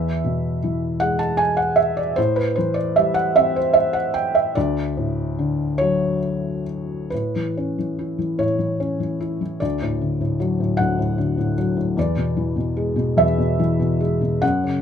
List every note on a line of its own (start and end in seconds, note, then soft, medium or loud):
0.00 2.14 E2 medium
0.00 0.57 E5 medium
0.24 1.74 B2 soft
0.64 2.14 E3 soft
1.00 2.14 G#3 medium
1.00 1.18 F#5 medium
1.19 1.39 A5 medium
1.37 1.56 G#5 medium
1.57 1.78 F#5 medium
1.76 1.97 E5 medium
1.97 2.17 D5 medium
2.16 4.52 A2 medium
2.16 2.35 C5 medium
2.36 2.57 B4 medium
2.56 4.12 E3 soft
2.56 2.76 C5 medium
2.74 2.96 D5 medium
2.96 4.52 G3 medium
2.96 3.14 E5 medium
3.14 3.36 F#5 medium
3.36 4.53 C4 medium
3.36 3.56 E5 medium
3.56 3.76 C5 medium
3.73 3.95 E5 medium
3.93 4.15 F#5 medium
4.14 4.35 G5 medium
4.35 4.54 E5 medium
4.55 7.08 D2 medium
4.55 6.19 D5 medium
4.97 6.63 A2 soft
5.39 7.08 D3 medium
5.78 7.08 F#3 medium
5.78 6.62 C#5 medium
7.10 8.37 A2 soft
7.10 8.42 B4 medium
7.36 7.77 E3 soft
7.57 8.79 C#4 soft
7.79 8.17 E3 soft
7.99 9.19 E4 soft
8.19 8.57 E3 soft
8.39 9.57 A2 soft
8.39 9.64 C#5 medium
8.59 8.98 E3 soft
8.80 9.58 C#4 soft
9.00 9.40 E3 soft
9.20 9.60 E4 soft
9.41 9.60 E3 soft
9.60 10.79 D2 soft
9.60 10.36 D5 medium
9.82 10.19 A2 soft
10.01 11.16 D3 soft
10.21 10.59 A2 soft
10.40 11.57 F#3 soft
10.60 10.97 A2 soft
10.77 11.94 D2 medium
10.77 11.52 F#5 medium
10.99 11.36 A2 soft
11.18 11.94 D3 soft
11.38 11.75 A2 soft
11.58 11.96 F#3 soft
11.77 11.96 A2 soft
11.97 13.15 E2 medium
11.97 13.24 D5 medium
12.16 12.55 B2 soft
12.37 13.58 E3 soft
12.56 12.94 B2 soft
12.77 13.99 G#3 medium
12.96 13.37 B2 soft
13.17 14.38 E2 medium
13.17 14.38 E5 medium
13.38 13.78 B2 soft
13.59 14.40 E3 medium
13.80 14.20 B2 soft
14.00 14.41 G#3 medium
14.21 14.42 B2 soft
14.41 14.82 F#2 medium
14.41 14.82 F#5 medium
14.64 14.82 C#3 soft